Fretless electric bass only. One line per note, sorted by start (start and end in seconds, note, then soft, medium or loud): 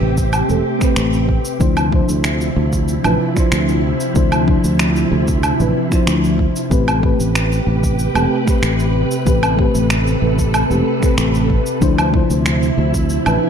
0.01 0.41 A1 medium
0.50 0.60 E1 medium
0.97 1.37 A1 medium
1.61 2.01 D2 medium
2.09 2.49 D2 medium
2.56 2.96 D2 medium
3.05 3.15 A1 medium
3.52 3.92 D2 medium
4.16 4.56 D2 medium
4.64 5.04 D2 medium
5.12 5.52 D2 medium
5.60 5.71 A1 medium
6.07 6.47 D2 medium
6.71 7.11 A1 medium
7.20 7.59 A1 medium
7.67 8.07 A1 medium
8.15 8.26 E1 medium
8.63 9.03 A1 medium
9.27 9.67 A1 loud
9.75 10.14 A1 medium
10.22 10.62 A1 medium
10.71 10.81 E1 medium
11.18 11.58 A1 medium
11.82 12.22 D2 medium
12.30 12.70 D2 medium
12.78 13.18 D2 medium
13.26 13.37 A1 medium